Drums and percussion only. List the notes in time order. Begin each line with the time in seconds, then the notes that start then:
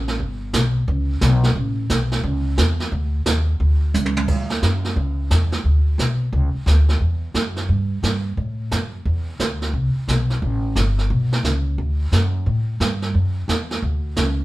0.08 snare
0.20 brush sweep, kick
0.53 snare, hi-hat pedal
0.87 brush sweep, kick
1.21 snare, hi-hat pedal
1.43 snare
1.55 brush sweep, kick
1.90 snare, hi-hat pedal
2.11 snare
2.24 brush sweep, kick
2.58 snare, hi-hat pedal
2.80 snare
2.92 brush sweep, kick
3.26 snare, hi-hat pedal
3.60 brush sweep, kick
3.94 hi-hat pedal, high tom
4.06 high tom
4.17 high tom
4.28 brush sweep, kick, crash
4.50 snare
4.62 snare, hi-hat pedal
4.84 snare
4.96 brush sweep, kick
5.31 snare, hi-hat pedal
5.52 snare
5.64 brush sweep, kick
5.99 snare, hi-hat pedal
6.33 brush sweep, kick
6.67 snare, hi-hat pedal
6.89 snare
7.01 brush sweep, kick
7.35 snare, hi-hat pedal
7.56 snare
7.69 brush sweep, kick
8.03 snare, hi-hat pedal
8.37 brush sweep, kick
8.71 snare, hi-hat pedal
9.05 brush sweep, kick
9.40 snare, hi-hat pedal
9.61 snare
9.73 brush sweep, kick
10.08 snare, hi-hat pedal
10.30 snare
10.42 brush sweep, kick
10.76 snare, hi-hat pedal
10.98 snare
11.10 brush sweep, kick
11.32 snare
11.44 snare, hi-hat pedal
11.78 brush sweep, kick
12.12 snare, hi-hat pedal
12.46 brush sweep, kick
12.81 snare, hi-hat pedal
13.02 snare
13.14 brush sweep, kick
13.49 snare, hi-hat pedal
13.71 snare
13.82 brush sweep, kick
14.16 snare, hi-hat pedal